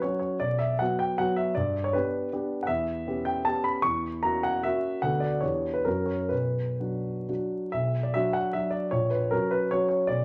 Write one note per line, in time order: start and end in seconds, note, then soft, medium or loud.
0.02 0.37 F#3 soft
0.02 0.37 C#4 soft
0.02 0.38 F#4 soft
0.02 0.18 C#5 medium
0.19 0.40 C#5 medium
0.40 0.78 B1 soft
0.40 0.59 D5 medium
0.59 0.79 E5 medium
0.79 1.15 F#3 soft
0.79 1.16 B3 soft
0.79 1.16 F#4 soft
0.79 0.99 F#5 medium
0.99 1.19 G5 medium
1.18 1.53 F#3 soft
1.18 1.53 B3 soft
1.18 1.53 F#4 soft
1.18 1.37 F#5 medium
1.36 1.56 E5 medium
1.55 1.93 G2 soft
1.55 1.84 D5 medium
1.84 1.94 C#5 medium
1.93 2.28 B3 soft
1.93 2.28 D4 soft
1.93 2.29 G4 soft
1.93 2.31 B4 medium
2.33 2.65 B3 soft
2.33 2.65 D4 soft
2.33 2.65 G4 soft
2.63 2.69 F#5 medium
2.67 3.05 E2 soft
2.67 3.26 E5 medium
3.07 3.42 B3 soft
3.07 3.42 C#4 soft
3.07 3.42 G4 soft
3.25 3.45 G5 medium
3.45 3.80 B3 soft
3.45 3.80 C#4 soft
3.45 3.81 G4 soft
3.45 3.64 A5 medium
3.64 3.83 B5 medium
3.82 4.23 E2 soft
3.82 4.23 C#6 medium
4.23 4.60 A#3 soft
4.23 4.61 C#4 soft
4.23 4.61 F#4 soft
4.23 4.44 A#5 medium
4.43 4.64 F#5 medium
4.63 4.99 A#3 soft
4.63 4.99 C#4 soft
4.63 5.00 F#4 soft
4.63 5.02 E5 medium
5.02 5.41 D2 soft
5.02 5.39 B3 soft
5.02 5.39 D4 soft
5.02 5.39 F#4 soft
5.02 5.21 F#5 medium
5.20 5.42 D5 medium
5.41 5.85 E2 soft
5.41 5.82 B3 soft
5.41 5.82 D4 soft
5.41 5.83 G4 soft
5.41 5.74 C#5 medium
5.74 5.85 B4 medium
5.85 6.30 F#2 soft
5.85 6.27 F#3 soft
5.85 6.27 C#4 soft
5.85 6.28 F#4 soft
5.85 6.08 A#4 medium
6.06 6.30 C#5 medium
6.29 6.79 B1 soft
6.29 7.28 B4 medium
6.80 7.25 F#3 soft
6.80 7.25 D4 soft
6.80 7.25 F#4 soft
7.29 7.69 F#3 soft
7.29 7.69 D4 soft
7.29 7.69 F#4 soft
7.72 8.13 B1 soft
7.72 8.03 E5 medium
8.03 8.14 D5 medium
8.14 8.51 F#3 soft
8.14 8.51 D4 soft
8.14 8.51 F#4 soft
8.14 8.35 E5 medium
8.33 8.54 F#5 medium
8.53 8.88 F#3 soft
8.53 8.88 D4 soft
8.53 8.88 F#4 soft
8.53 8.73 E5 medium
8.70 8.91 D5 medium
8.91 9.31 A#1 soft
8.91 9.11 C#5 medium
9.10 9.31 B4 medium
9.31 9.68 F#3 soft
9.31 9.68 C#4 soft
9.31 9.68 F#4 soft
9.31 9.51 A#4 medium
9.51 9.71 B4 medium
9.71 10.06 F#3 soft
9.71 10.06 C#4 soft
9.71 10.06 F#4 soft
9.71 9.87 C#5 medium
9.89 10.08 C#5 medium
10.07 10.25 B1 soft
10.07 10.25 D5 medium